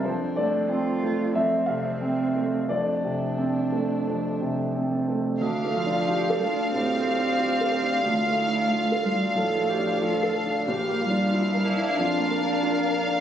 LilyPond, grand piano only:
\new Staff \with { instrumentName = "Grand piano" } { \time 4/4 \key d \minor \tempo 4 = 91 << { c''8 d''4. e''8 f''4. | d''2.~ d''8 r8 | r1 | r1 |
r1 | } \\ { f,8 a8 c'8 a8 f,8 c8 c'8 a8 | f,8 c8 c'8 a8 f,8 c8 c'8 a8 | \tuplet 3/2 { d,8 a8 d'8 f'8 a'8 d'8 a,8 a8 d'8 f'8 a'8 d'8 } | \tuplet 3/2 { d,8 a8 d'8 f'8 a'8 d'8 a,8 a8 d'8 f'8 a'8 d'8 } |
\tuplet 3/2 { bes,,8 bes8 d'8 f'8 bes'8 d'8 f,8 bes8 d'8 f'8 bes'8 d'8 } | } >> }